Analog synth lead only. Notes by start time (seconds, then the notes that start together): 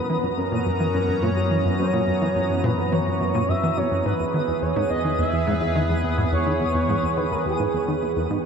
Already playing: B4
0.38 A#4
0.66 A#4
1.22 C#5
1.79 C#5
2.64 B4
2.92 C#5
3.49 E5
3.77 C#5
4.05 B4
4.34 B4
4.62 C#5
4.90 D#5
5.19 E5
6.32 C#5
7.17 B4
7.31 A#4
7.46 G#4